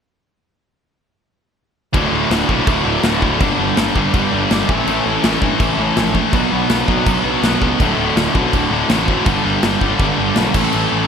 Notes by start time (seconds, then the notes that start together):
1.93 D1 D2 A2 D3 A3 F#4, kick, crash
2.12 D1 D2 A2 D3
2.30 D1 D2 A2 D3, snare, crash
2.48 B1 D2 A2 D3 A3 F#4, kick
2.67 D1 D2 A2 D3, kick, crash
2.84 D1 D2 A2 D3
3.03 D1 D2 A2 D3 A3 F#4, snare, crash
3.20 D2 A2 D3, kick
3.39 G1 G2 D3 G3 B3 D4 G4, kick, crash
3.58 G1 G2 D3 G3
3.75 G1 G2 D3 G3, snare, crash
3.95 G1 G2 D3 G3 B3 D4 G4, kick
4.13 G1 G2 D3 G3, kick, crash
4.31 G1 G2 D3 G3
4.51 G1 G2 D3 G3 B3 D4 G4, snare, crash
4.68 A1 A2 E3 A3 C#4 E4 A4, kick
4.87 A1 A2 E3 A3, crash
5.05 A1 A2 E3 A3
5.24 A1 A2 E3 A3 C#4 E4 A4, snare, crash
5.42 G2 A2 E3 A3, kick
5.60 A1 A2 E3 A3, kick, crash
5.77 A1 A2 E3 A3 C#4 E4 A4
5.96 A#1 A2 E3 A3, snare, crash
6.14 A2 E3 A3, kick
6.33 B1 B2 F#3 B3 D4 F#4 B4, kick, crash
6.52 B1 B2 F#3 B3
6.69 B1 B2 F#3 B3, snare, crash
6.87 B1 B2 F#3 B3 D4 F#4 B4, kick
7.06 B1 B2 F#3 B3, kick, crash
7.25 B1 B2 F#3 B3
7.43 B1 B2 F#3 B3 D4 F#4 B4, snare, crash
7.62 C#2 B2 F#3 B3, kick
7.80 D1 D2 A2 D3 A3 F#4, kick, crash
7.97 D1 D2 A2 D3
8.15 D1 D2 A2 D3, snare, crash
8.34 B1 D2 A2 D3 A3 F#4, kick
8.53 D1 D2 A2 D3, kick, crash
8.71 D1 D2 A2 D3
8.89 A1 D2 A2 D3 A3 F#4, snare, crash
9.08 D2 A2 D3, kick
9.26 G1 G2 D3 G3 B3 D4 G4, kick, crash
9.44 G1 G2 D3 G3
9.62 G1 G2 D3 G3, snare, crash
9.80 G1 G2 D3 G3 B3 D4 G4, kick
9.99 G1 G2 D3 G3, kick, crash
10.18 G1 G2 D3 G3
10.36 B1 G2 D3 G3 B3 D4 G4, snare, crash
10.54 A1 A2 E3 A3 C#4 E4 A4, kick, crash
10.72 A1 A2 E3 A3, crash
10.90 A1 A2 E3 A3